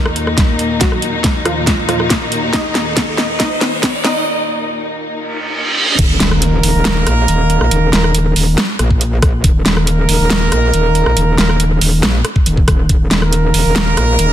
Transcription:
Already playing: string section D#2 A#2 A#3 D#4, synth pluck A#3 A#4, riser
0.06 cross-stick
0.16 closed hi-hat
0.27 cross-stick
0.38 kick, snare, closed hi-hat
0.59 closed hi-hat
0.81 synth pluck F#3 F#4, kick, snare, closed hi-hat
0.92 cross-stick
1.02 closed hi-hat
1.24 kick, snare, closed hi-hat
1.45 synth pluck F3 F4, cross-stick, closed hi-hat
1.67 kick, snare, closed hi-hat
1.89 synth pluck F3 F4, cross-stick, closed hi-hat
2.00 cross-stick
2.10 kick, snare, closed hi-hat
2.32 closed hi-hat
2.53 synth pluck D#4 D#5, kick, snare, closed hi-hat
2.75 snare, closed hi-hat
2.97 kick, snare, closed hi-hat
3.18 synth pluck D#4 D#5, snare, closed hi-hat
3.40 synth pluck D#4 D#5, kick, snare, closed hi-hat
3.61 snare, closed hi-hat
3.83 kick, snare, closed hi-hat
4.04 synth pluck D#4 D#5, snare, closed hi-hat
5.12 reverse cymbal
5.99 wobble bass D#1, kick, closed hi-hat, crash, impact
6.20 wobble bass D#1, brass ensemble A#3 D#4 A#4, snare, closed hi-hat
6.31 cross-stick
6.42 closed hi-hat
6.63 wobble bass D#1, open hi-hat
6.75 wobble bass D#1
6.85 wobble bass D#1, snare, closed hi-hat
7.07 wobble bass A#1, cross-stick, closed hi-hat
7.28 wobble bass D#1, closed hi-hat
7.50 closed hi-hat
7.61 wobble bass A#1, cross-stick
7.71 wobble bass D#1, closed hi-hat
7.93 wobble bass D#1, brass ensemble A#3 D#4 A#4, snare, closed hi-hat
8.04 cross-stick
8.15 closed hi-hat
8.36 wobble bass D#1, open hi-hat
8.58 cross-stick, snare, closed hi-hat
8.79 wobble bass A#1, cross-stick, closed hi-hat
8.91 kick
9.01 closed hi-hat
9.22 kick, cross-stick, closed hi-hat
9.44 wobble bass D#1, kick, closed hi-hat
9.66 wobble bass D#1, brass ensemble A#3 D#4 A#4, snare, closed hi-hat
9.77 cross-stick
9.87 closed hi-hat
10.09 wobble bass D#1, open hi-hat
10.20 wobble bass D#1
10.30 wobble bass D#1, snare, closed hi-hat
10.52 wobble bass A#1, cross-stick, closed hi-hat
10.74 wobble bass D#1, closed hi-hat
10.95 closed hi-hat
11.06 wobble bass A#1, cross-stick
11.17 wobble bass D#1, closed hi-hat
11.38 wobble bass D#1, brass ensemble A#3 D#4 A#4, snare, closed hi-hat
11.49 cross-stick
11.60 closed hi-hat
11.81 wobble bass D#1, open hi-hat
12.03 wobble bass A#1, cross-stick, snare, closed hi-hat
12.25 cross-stick, closed hi-hat
12.36 kick
12.46 wobble bass D#1, closed hi-hat
12.57 kick
12.68 kick, cross-stick, closed hi-hat
12.89 wobble bass D#1, kick, closed hi-hat
13.11 wobble bass D#1, brass ensemble A#3 D#4 A#4, snare, closed hi-hat
13.22 cross-stick
13.33 closed hi-hat
13.54 wobble bass D#1, open hi-hat
13.65 wobble bass D#1
13.76 wobble bass D#1, snare, closed hi-hat
13.97 wobble bass A#1, cross-stick, closed hi-hat
14.19 wobble bass D#1, closed hi-hat

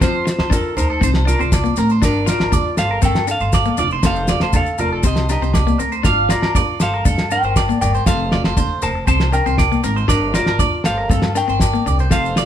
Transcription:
0.01 upright bass F2, clean electric guitar C4 F4 C5, kick, snare, low agogo, maracas
0.26 muted clean electric guitar stroke, snare, maracas
0.39 upright bass F2, clean electric guitar C5, snare, low agogo
0.50 clean electric guitar D4 F4 A4 A#4, kick, muted conga, high conga, maracas
0.77 upright bass D2, clean electric guitar D#4 A#4 C5, high conga, low agogo, maracas
0.90 clean electric guitar A4
1.01 upright bass C2, clean electric guitar C4 D#4 C5, kick, maracas
1.14 snare, low agogo
1.25 clean electric guitar D4 F4 A#4 D5, snare, muted conga, maracas
1.39 upright bass C2, clean electric guitar C4 C5, maracas
1.52 clean electric guitar D5, kick, snare, high conga, low agogo, maracas
1.64 clean electric guitar A#3, maracas
1.76 upright bass A1, clean electric guitar C4 A#4, snare, maracas
1.90 clean electric guitar C5, maracas
2.02 upright bass G1, clean electric guitar D4 A#4 D5, kick, snare, low agogo, maracas
2.26 clean electric guitar F4 A#4 D5, snare, maracas
2.40 upright bass G1, clean electric guitar A#4, snare, low agogo
2.52 clean electric guitar D4 D5, kick, muted conga, high conga, maracas
2.77 upright bass G1, clean electric guitar A4 C5 F5, snare, low agogo, maracas
2.91 clean electric guitar A#4
3.02 upright bass G2, clean electric guitar C4 A4 A#4 G5, kick, muted conga, high conga, maracas
3.15 snare, low agogo, maracas
3.27 clean electric guitar D4 A4 F5, muted clean electric guitar stroke, muted conga, maracas
3.40 upright bass G1, clean electric guitar C5, maracas
3.53 clean electric guitar D5, kick, snare, low agogo, maracas
3.65 clean electric guitar A#3, maracas
3.77 upright bass F1, clean electric guitar D4 F4 D5, high conga, maracas
3.90 clean electric guitar C5, maracas
4.03 upright bass F1, clean electric guitar C4 A4 C5 F5, kick, snare, low agogo, maracas
4.16 maracas
4.28 clean electric guitar F4 D5, snare, low conga, maracas
4.40 upright bass F1, clean electric guitar C5, snare, low agogo, maracas
4.53 clean electric guitar D4 A4 F5, kick, muted conga, high conga, maracas
4.66 maracas
4.78 upright bass F1, clean electric guitar F4 A#4 D5, high conga, low agogo, maracas
4.92 clean electric guitar A4
5.03 upright bass C2, clean electric guitar C4 G4 C5 D#5, kick, maracas
5.16 snare, low agogo, maracas
5.29 clean electric guitar D4 G4 A#4 D#5, snare, muted conga, maracas
5.41 upright bass C2, clean electric guitar C4 C5, maracas
5.53 clean electric guitar D5, kick, snare, high conga, low agogo, maracas
5.67 clean electric guitar A#3, maracas
5.79 upright bass D2, clean electric guitar C4 A#4, maracas
5.92 clean electric guitar C5, maracas
6.03 upright bass G1, clean electric guitar D4 F4 D5 F5, kick, snare, low agogo, maracas
6.29 clean electric guitar F4 A#4 D5, snare, maracas
6.42 upright bass G1, clean electric guitar A#4, snare, low agogo
6.55 clean electric guitar D4 D5, kick, muted conga, high conga, maracas
6.80 upright bass G1, clean electric guitar A4 C5 F5, snare, low agogo, maracas
6.94 clean electric guitar A#4
7.05 upright bass G2, clean electric guitar D4 A4, kick, muted conga, high conga, maracas
7.18 snare, low agogo, maracas
7.31 clean electric guitar D4 A#4 G5, muted conga, maracas
7.43 upright bass G1, clean electric guitar C5, maracas
7.56 clean electric guitar D5, kick, snare, low agogo, maracas
7.69 clean electric guitar A#3, maracas
7.81 upright bass G1, clean electric guitar A#4 D5 G5, high conga, maracas
7.95 clean electric guitar C5, maracas
8.06 upright bass F1, clean electric guitar C4 A4 C5 F5, kick, snare, low agogo, maracas
8.32 clean electric guitar F4 D5, snare, low conga
8.44 upright bass F1, clean electric guitar C5, snare, low agogo
8.57 clean electric guitar D4 C5, kick, muted conga, high conga, maracas
8.82 upright bass F1, clean electric guitar A#4 C5 A5, high conga, low agogo, maracas
8.95 muted clean electric guitar stroke
9.07 upright bass C2, clean electric guitar C4 C5 A5, kick, maracas
9.20 snare, low agogo, maracas
9.32 clean electric guitar D4 A#4 G5, snare, muted conga, maracas
9.46 upright bass C2, clean electric guitar C4 C5, maracas
9.58 clean electric guitar D5, kick, snare, high conga, low agogo, maracas
9.72 clean electric guitar A#3, maracas
9.83 upright bass G#1, clean electric guitar C4 A#4, snare, maracas
9.96 clean electric guitar C5, maracas
10.08 upright bass G1, clean electric guitar D4 A#4 D5, kick, snare, low agogo, maracas
10.34 clean electric guitar F4 A#4 D5, snare, maracas
10.46 upright bass G1, clean electric guitar A#4, snare, low agogo
10.59 clean electric guitar D4 D5, kick, muted conga, high conga, maracas
10.84 upright bass G1, clean electric guitar A4 C5 F5, snare, low agogo, maracas
10.98 clean electric guitar A#4
11.09 upright bass G2, clean electric guitar C4 A4, kick, muted conga, high conga, maracas
11.22 snare, low agogo, maracas
11.35 clean electric guitar D4 A#4 G5, muted clean electric guitar stroke, muted conga, maracas
11.48 upright bass G1, clean electric guitar C4 C5, maracas
11.60 clean electric guitar D5, kick, snare, low agogo, maracas
11.74 clean electric guitar A#3, maracas
11.86 upright bass C2, clean electric guitar D4 D5, high conga, maracas
11.99 clean electric guitar C5, maracas
12.11 upright bass F1, clean electric guitar C4 A4 C5 F5, kick, snare, muted conga, low agogo, maracas
12.25 maracas
12.36 clean electric guitar F4 D5, snare, maracas

